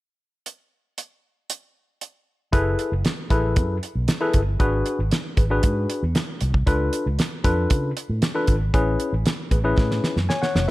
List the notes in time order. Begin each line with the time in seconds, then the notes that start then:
0.46 closed hi-hat
0.98 closed hi-hat
1.50 closed hi-hat
2.01 closed hi-hat
2.53 F#1 E4 G#4 A4 B4, kick, closed hi-hat
2.79 closed hi-hat
2.92 F#1
3.05 snare, closed hi-hat
3.30 A1 E4 G#4 A4 B4, kick, closed hi-hat
3.56 F#2, kick, closed hi-hat
3.83 closed hi-hat
3.95 B1
4.08 snare, closed hi-hat
4.21 E4 G#4 A4 B4
4.33 G1, kick, closed hi-hat
4.60 G#1 D4 F#4 G#4 B4, kick, closed hi-hat
4.86 closed hi-hat
4.99 G#1
5.11 snare, closed hi-hat
5.37 G#1 G#4 B4, kick, closed hi-hat
5.50 D4 F#4 G#4 B4
5.63 G#2, kick, closed hi-hat
5.90 closed hi-hat
6.03 E2
6.15 snare, closed hi-hat
6.41 C2, closed hi-hat
6.54 kick
6.66 C#2 D4 F4 A4 B4, kick, closed hi-hat
6.93 closed hi-hat
7.06 C#2
7.19 snare, closed hi-hat
7.44 F2 D4 F4 A4 B4, kick, closed hi-hat
7.70 C#3, kick, closed hi-hat
7.97 closed hi-hat
8.09 A2
8.22 snare, closed hi-hat
8.35 D4 F4 A4 B4
8.47 G#1, kick, closed hi-hat
8.74 A1 C#4 E4 G#4 B4, kick, closed hi-hat
9.00 closed hi-hat
9.13 A1
9.26 snare, closed hi-hat
9.51 A1 G#4 B4, kick, closed hi-hat
9.64 C#4 E4 G#4 B4
9.78 A2, kick, snare
9.91 snare
10.04 snare
10.16 F#2, snare
10.29 C#5 G#5, snare
10.42 C#5 F#5, snare
10.55 F1, snare